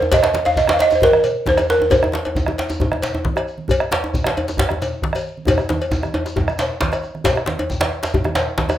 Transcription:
Already playing: C5
0.01 high conga, djembe tone, shekere
0.11 D#5, bombo low, cowbell, djembe slap, low conga, djembe bass, shekere
0.23 bombo rim, djembe slap, djembe tone
0.34 bombo rim, djembe slap, high conga
0.45 F5, cowbell, djembe tone
0.56 D#5, bombo low, djembe slap, shekere
0.67 bombo rim, djembe slap, high conga, djembe tone
0.73 F5
0.79 D#5, cowbell, djembe slap, shekere
0.90 djembe slap, djembe tone, shekere
0.95 C5
1.01 A#4, bombo rim, bombo low, djembe slap, low conga, djembe bass
1.12 bombo rim, high conga
1.24 cowbell, shekere
1.46 C5, bombo low, djembe slap, high conga, djembe tone
1.57 bombo rim, cowbell, djembe tone, shekere
1.69 A#4, djembe slap, shekere
1.79 high conga, djembe tone
1.90 C5, bombo low, cowbell, djembe tone, low conga, djembe bass, shekere
2.02 bombo rim, djembe tone
2.12 bombo rim, djembe slap, high conga
2.15 djembe slap
2.25 cowbell, djembe tone
2.35 bombo low, djembe tone, shekere
2.46 bombo rim, djembe slap, high conga, djembe tone
2.58 cowbell, djembe slap, shekere
2.69 djembe slap, djembe tone, shekere
2.80 bombo rim, bombo low, djembe tone, low conga, djembe bass
2.92 bombo rim, high conga, djembe tone
3.02 cowbell, djembe slap, shekere
3.15 djembe tone
3.24 bombo low, djembe slap, high conga
3.36 bombo rim, cowbell, djembe tone
3.48 shekere
3.58 high conga
3.68 bombo low, cowbell, low conga, djembe bass, shekere
3.80 bombo rim, djembe tone
3.91 bombo rim, djembe slap, high conga
4.04 djembe tone
4.14 bombo low, djembe tone, shekere
4.24 bombo rim, djembe slap, high conga, djembe tone
4.36 cowbell, djembe tone, shekere
4.48 djembe slap, djembe tone, shekere
4.57 bombo rim, bombo low, djembe slap, low conga, djembe bass
4.69 bombo rim, djembe tone, high conga
4.82 cowbell, djembe tone, shekere
5.02 bombo low, djembe slap, high conga
5.13 bombo rim, cowbell, djembe tone, shekere
5.26 shekere
5.37 high conga
5.46 bombo rim, bombo low, cowbell, high conga, djembe tone, djembe bass, low conga, shekere
5.58 bombo rim, djembe tone, high conga, shekere
5.69 djembe slap, djembe tone, high conga, shekere
5.81 cowbell, shekere
5.91 bombo low, djembe tone, shekere
6.03 bombo rim, djembe tone, high conga, shekere
6.14 cowbell, djembe tone
6.25 bombo rim, djembe slap, shekere
6.36 bombo low, djembe tone, djembe bass, low conga
6.48 bombo rim, high conga, shekere
6.58 cowbell, djembe slap, high conga, shekere
6.81 bombo low, djembe slap, high conga, shekere
6.92 bombo rim, cowbell, djembe tone, shekere
7.03 bombo rim, djembe slap, high conga, shekere
7.15 bombo rim, high conga
7.24 bombo low, cowbell, djembe slap, djembe bass, low conga, shekere
7.36 bombo rim, djembe tone
7.46 bombo rim, djembe slap, high conga
7.59 cowbell, djembe tone
7.70 bombo low, djembe tone, shekere
7.80 bombo rim, djembe slap, djembe tone, high conga
7.92 shekere
8.03 djembe slap, shekere
8.14 bombo rim, bombo low, djembe tone, low conga, djembe bass
8.24 bombo rim, djembe tone, high conga
8.35 cowbell, djembe slap, shekere
8.58 bombo low, djembe slap, high conga
8.69 bombo rim, cowbell, djembe tone, shekere

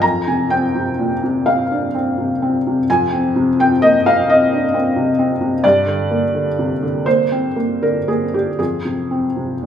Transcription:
0.02 F2 A#5
0.27 C3 G#5
0.50 C4 G5
0.75 C3
0.99 A#2
1.24 C3
1.46 C4 F5
1.71 D4
1.95 C4
2.18 C3
2.42 C4
2.67 C3
2.90 F2 G#5
3.13 C4
3.36 C3
3.60 C4 G5
3.82 A#3 D#5
4.06 C3 F5
4.29 C4 D#5
4.53 D4
4.74 C4
4.96 C3
5.19 C4
5.41 C3
5.64 G2 D5
5.86 D3
6.11 A#3
6.35 D3
6.59 C3
6.82 D3
7.06 A#3 C5
7.32 C4
7.56 A#3
7.82 D3 A#4
8.08 A#3 G#4
8.34 D3 G4
8.59 F2 G#4
8.85 C3
9.11 C4
9.36 C3
9.63 A#2

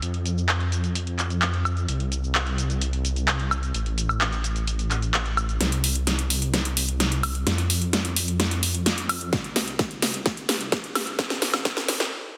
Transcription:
0.02 F2, closed hi-hat, shaker
0.14 closed hi-hat
0.26 closed hi-hat, shaker
0.38 shaker
0.49 clap, closed hi-hat, shaker
0.60 closed hi-hat
0.72 closed hi-hat, shaker
0.84 closed hi-hat, shaker
0.95 closed hi-hat, shaker
1.07 closed hi-hat
1.19 clap, closed hi-hat, shaker
1.30 closed hi-hat, shaker
1.42 clap, closed hi-hat, shaker
1.54 closed hi-hat
1.65 closed hi-hat, high woodblock, shaker
1.77 closed hi-hat, shaker
1.88 C2, closed hi-hat, shaker
2.00 closed hi-hat
2.12 closed hi-hat, shaker
2.24 shaker
2.35 clap, closed hi-hat, shaker
2.47 closed hi-hat
2.58 closed hi-hat, shaker
2.70 closed hi-hat, shaker
2.81 closed hi-hat, shaker
2.93 closed hi-hat
3.05 closed hi-hat, shaker
3.16 closed hi-hat, shaker
3.28 clap, closed hi-hat, shaker
3.40 closed hi-hat
3.51 closed hi-hat, high woodblock, shaker
3.63 closed hi-hat, shaker
3.74 A1, closed hi-hat, shaker
3.86 closed hi-hat
3.98 closed hi-hat, shaker
4.09 high woodblock, shaker
4.21 clap, closed hi-hat, shaker
4.33 closed hi-hat, shaker
4.44 closed hi-hat, shaker
4.56 closed hi-hat, shaker
4.67 closed hi-hat, shaker
4.79 closed hi-hat, shaker
4.91 clap, closed hi-hat, shaker
5.02 closed hi-hat, shaker
5.14 clap, closed hi-hat, shaker
5.26 closed hi-hat
5.37 closed hi-hat, high woodblock, shaker
5.49 closed hi-hat, shaker
5.61 C2, snare, closed hi-hat
5.72 closed hi-hat
5.84 open hi-hat
5.95 closed hi-hat
6.07 snare, closed hi-hat
6.19 closed hi-hat
6.30 open hi-hat
6.42 closed hi-hat
6.54 snare, closed hi-hat
6.65 closed hi-hat
6.77 open hi-hat
6.89 closed hi-hat
7.00 snare, closed hi-hat
7.12 closed hi-hat
7.23 open hi-hat, high woodblock
7.35 closed hi-hat
7.47 F2, snare, closed hi-hat
7.58 closed hi-hat
7.70 open hi-hat
7.82 closed hi-hat
7.93 snare, closed hi-hat
8.05 closed hi-hat
8.16 open hi-hat
8.28 closed hi-hat
8.40 snare, closed hi-hat
8.51 closed hi-hat
8.63 open hi-hat
8.75 closed hi-hat
8.86 snare, closed hi-hat
8.98 closed hi-hat
9.09 open hi-hat, high woodblock
9.21 closed hi-hat
9.33 C2, kick, snare, closed hi-hat
9.44 closed hi-hat
9.56 snare, open hi-hat
9.68 closed hi-hat
9.79 kick, snare, closed hi-hat
9.91 closed hi-hat
10.02 snare, open hi-hat
10.14 closed hi-hat
10.26 kick, snare, closed hi-hat
10.37 closed hi-hat
10.49 snare, open hi-hat
10.61 closed hi-hat
10.72 kick, snare, closed hi-hat
10.84 closed hi-hat
10.95 snare, open hi-hat, high woodblock
11.07 closed hi-hat
11.19 A1, kick, snare, closed hi-hat
11.30 snare, closed hi-hat
11.42 snare, open hi-hat
11.54 snare, closed hi-hat, high woodblock
11.65 kick, snare, closed hi-hat
11.77 snare, closed hi-hat
11.88 snare, open hi-hat
12.00 snare, closed hi-hat

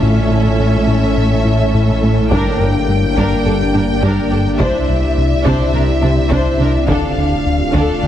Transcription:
Already playing: A3 A4
0.01 A1 A2 A3 C#4 E4 C#5 E5
0.30 A2
0.59 A2
0.87 A2
1.17 A2
1.45 A2
1.74 A2
2.03 A2
2.31 G1 G2 A#3 D4 G4 A#4 D5 G5, taiko
2.60 G2
2.88 G2
3.17 G2 D4 A#4, taiko
3.45 G2 D4 A4
3.74 G2 D4 A#4
4.02 G2 D4 A#4, taiko
4.31 G2 D4 A4
4.59 C2 C3 C4 D4 E4 C5 E5, taiko
4.88 C2
5.17 C2
5.45 C2 C3 D4 C5, taiko
5.73 C2 C3 D4 A#4
6.02 C2 C3 D4 C5
6.30 C2 C3 D4 C5, taiko
6.59 C2 C3 D4 A#4
6.87 D1 D2 D3 A3 D4 F4 A4 D5 F5, taiko
7.17 D2
7.45 D2
7.73 D2 D3 D4 A4, taiko
8.02 D2 D3 D4 G4

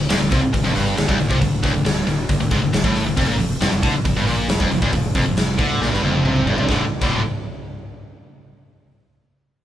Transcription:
0.09 D1 D2, snare, open hi-hat
0.20 D1 D2
0.31 C2 C3, kick, open hi-hat
0.43 muted distorted electric guitar stroke, muted fingered electric bass stroke
0.53 D1 D2, kick, open hi-hat
0.64 F1 F2
0.75 G1 G2, open hi-hat
0.97 D1 D2, snare, open hi-hat
1.08 D1 D2, kick
1.19 D1 D2, open hi-hat
1.30 C2 C3, kick
1.41 D1 D2, kick, open hi-hat
1.63 D1 D2, kick, open hi-hat
1.74 D1 D2
1.85 D1 D2, snare, open hi-hat
2.07 D1 D2, open hi-hat
2.29 D1 D2, kick, open hi-hat
2.40 D1 D2
2.51 G#1 G#2, kick, open hi-hat
2.61 D1 D2
2.73 D1 D2, snare, open hi-hat
2.84 A1 A2, kick
2.96 open hi-hat
3.06 D1 D2
3.17 F1 F2, kick, open hi-hat
3.28 A#1 A#2
3.38 F1 F2, open hi-hat
3.61 F1 F2, snare, open hi-hat
3.72 F1 F2
3.83 D2 D3, kick, open hi-hat
3.94 muted fingered electric bass stroke, muted distorted electric guitar stroke
4.05 F1 F2, kick, open hi-hat
4.15 G1 G2
4.26 A#1 A#2, open hi-hat
4.49 F1 F2, snare, open hi-hat
4.60 F1 F2, kick
4.71 F1 F2, open hi-hat
4.82 D1 D2, kick
4.93 F1 F2, kick, open hi-hat
5.15 F1 F2, kick, open hi-hat
5.26 F1 F2
5.37 F1 F2, snare, open hi-hat
5.59 D2 D3, kick, open hi-hat
5.81 A#1 A#2, snare
5.91 G1 G2, snare
6.03 F1 F2, high tom
6.15 high tom
6.24 C2 C3, mid tom
6.36 mid tom
6.46 G1 G2, floor tom
6.57 C2 C3, floor tom
6.68 D1 D2 A2 D3, kick, snare
7.01 D1 D2 A2 D3, kick, crash

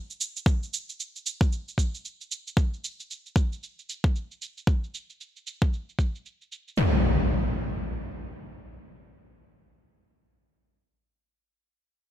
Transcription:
0.10 cabasa
0.21 cabasa
0.36 cabasa
0.46 kick, cabasa
0.63 cabasa
0.74 cabasa
0.89 cabasa
1.00 cabasa
1.16 cabasa
1.26 cabasa
1.41 kick, cabasa
1.52 cabasa
1.68 cabasa
1.78 kick, cabasa
1.94 cabasa
2.05 cabasa
2.21 cabasa
2.32 cabasa
2.47 cabasa
2.57 kick, cabasa
2.74 cabasa
2.84 cabasa
3.00 cabasa
3.11 cabasa
3.26 cabasa
3.36 kick, cabasa
3.52 cabasa
3.63 cabasa
3.79 cabasa
3.89 cabasa
4.04 kick, cabasa
4.16 cabasa
4.31 cabasa
4.42 cabasa
4.57 cabasa
4.67 kick, cabasa
4.84 cabasa
4.94 cabasa
5.10 cabasa
5.21 cabasa
5.36 cabasa
5.47 cabasa
5.62 kick, cabasa
5.73 cabasa
5.89 cabasa
5.99 kick, cabasa
6.15 cabasa
6.26 cabasa
6.41 cabasa
6.52 cabasa
6.68 cabasa
6.77 impact

